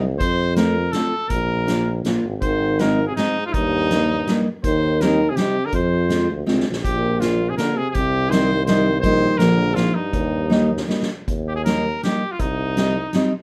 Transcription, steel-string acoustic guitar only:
0.56 0.75 A3 medium
0.56 0.75 C4 medium
0.56 0.75 F4 medium
0.95 1.12 A3 medium
0.95 1.12 C4 medium
0.95 1.13 F4 medium
1.67 1.85 A#3 medium
1.67 1.85 D4 medium
1.67 1.86 F4 medium
2.06 2.24 A#3 medium
2.06 2.24 D4 medium
2.06 2.24 F4 medium
2.80 2.98 G#3 medium
2.80 2.98 C4 medium
2.80 2.98 D#4 medium
3.18 3.36 G#3 medium
3.18 3.36 C4 medium
3.18 3.36 D#4 medium
3.91 4.09 G3 medium
3.91 4.09 A#3 medium
3.91 4.10 D#4 medium
4.28 4.46 G3 medium
4.28 4.46 A#3 medium
4.28 4.46 D#4 medium
5.01 5.18 G3 medium
5.01 5.19 C4 medium
5.01 5.19 D#4 medium
5.38 5.55 G3 medium
5.38 5.55 C4 medium
5.38 5.55 D#4 medium
6.09 6.28 G#3 medium
6.09 6.28 C4 medium
6.09 6.28 F4 medium
6.46 6.65 G#3 medium
6.46 6.65 C4 medium
6.46 6.65 F4 medium
7.20 7.39 A#3 medium
7.20 7.39 D4 medium
7.20 7.40 F4 medium
7.58 7.76 A#3 medium
7.58 7.77 D4 medium
7.58 7.77 F4 medium
8.32 8.50 G3 medium
8.32 8.50 C4 medium
8.32 8.50 D#4 medium
8.68 8.86 G3 medium
8.68 8.86 C4 medium
8.68 8.86 D#4 medium
9.04 9.34 G3 medium
9.04 9.34 A#3 medium
9.04 9.34 D#4 medium
9.38 9.57 F3 medium
9.38 9.57 A#3 medium
9.38 9.58 D4 medium
9.75 9.94 F3 medium
9.75 9.94 A#3 medium
9.75 9.94 D4 medium
10.50 10.69 G3 medium
10.50 10.69 A#3 medium
10.50 10.69 D#4 medium
10.88 11.07 G3 medium
10.88 11.07 A#3 medium
10.88 11.08 D#4 medium
11.66 11.84 G3 medium
11.66 11.84 A#3 medium
11.66 11.84 D#4 medium
12.04 12.21 G3 medium
12.04 12.21 A#3 medium
12.04 12.22 D#4 medium
12.77 12.94 G3 medium
12.77 12.94 C4 medium
12.77 12.95 D#4 medium
13.14 13.31 G3 medium
13.14 13.31 C4 medium
13.14 13.31 D#4 medium

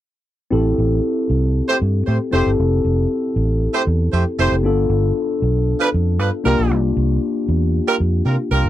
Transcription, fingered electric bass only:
0.52 0.73 A1 medium
0.78 0.99 A1 medium
1.30 1.60 C2 medium
1.82 2.02 G2 medium
2.08 2.18 A2 medium
2.33 2.43 F1 medium
2.46 2.56 G1 medium
2.60 2.80 F1 medium
2.85 3.05 F1 medium
3.36 3.67 A1 medium
3.87 4.08 E2 medium
4.13 4.23 F2 medium
4.39 4.49 F1 medium
4.52 4.64 F1 medium
4.64 4.85 G1 loud
4.90 5.10 G1 medium
5.42 5.73 B1 medium
5.94 6.19 F2 medium
6.19 6.29 G2 medium
6.46 6.56 C2 medium
6.59 6.71 A#1 medium
6.71 6.91 C2 medium
6.97 7.17 C2 medium
7.49 7.79 E2 medium
8.00 8.21 F2 medium
8.26 8.36 C3 medium
8.51 8.62 C2 medium
8.64 8.69 G1 medium

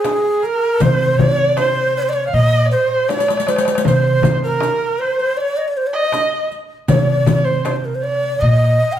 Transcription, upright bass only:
0.81 1.16 C3 medium
1.19 2.29 C3 medium
2.33 2.68 A#2 medium
3.86 4.21 C3 medium
4.24 4.59 C3 medium
6.89 7.24 C3 medium
7.27 8.38 C3 medium
8.42 8.77 A#2 loud

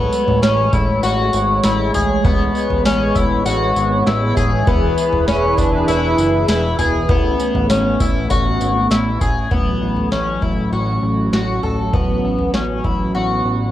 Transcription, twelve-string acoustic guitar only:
0.00 0.42 B3 medium
0.43 0.73 C#4 medium
0.73 1.03 E4 medium
1.03 1.63 F#4 medium
1.64 1.94 E4 medium
1.94 2.24 G#4 medium
2.24 2.85 B3 medium
2.85 3.15 C#4 medium
3.15 3.45 E4 medium
3.46 4.06 F#4 medium
4.06 4.36 E4 medium
4.37 4.67 G#4 medium
4.67 5.27 B3 loud
5.28 5.57 C#4 medium
5.58 5.88 D4 medium
5.88 6.47 E4 loud
6.49 6.78 E4 medium
6.79 7.09 G#4 medium
7.09 7.69 B3 medium
7.69 8.00 C#4 medium
8.00 8.30 E4 medium
8.30 8.90 F#4 loud
8.90 9.21 E4 medium
9.21 9.51 G#4 medium
9.51 10.11 B3 medium
10.12 10.42 C#4 medium
10.42 10.72 E4 medium
10.73 11.32 F#4 medium
11.33 11.63 F#4 medium
11.63 11.94 A4 medium
11.94 12.54 B3 medium
12.54 12.85 C#4 medium
12.84 13.14 E4 medium
13.15 13.71 F#4 medium

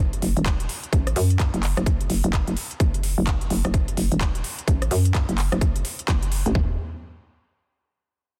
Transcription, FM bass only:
0.00 0.21 F#1 loud
0.22 0.34 F#1 medium
0.37 0.68 E1 loud
0.93 1.15 A1 loud
1.16 1.52 F#2 loud
1.54 1.75 F#1 loud
1.77 1.85 F#1 loud
1.86 2.08 F#1 loud
2.10 2.22 F#1 medium
2.24 2.45 F#1 loud
2.48 2.55 F#1 loud
2.80 3.16 F#1 medium
3.18 3.49 F#1 medium
3.50 3.62 F#1 loud
3.65 3.96 F#1 loud
3.97 4.09 F#1 medium
4.12 4.43 E1 medium
4.68 4.90 A1 loud
4.91 5.26 F#2 loud
5.29 5.50 F#1 loud
5.52 5.60 F#1 loud
5.61 5.83 F#1 medium
6.08 6.44 F#1 loud
6.46 6.54 A1 medium
6.55 6.77 E1 medium

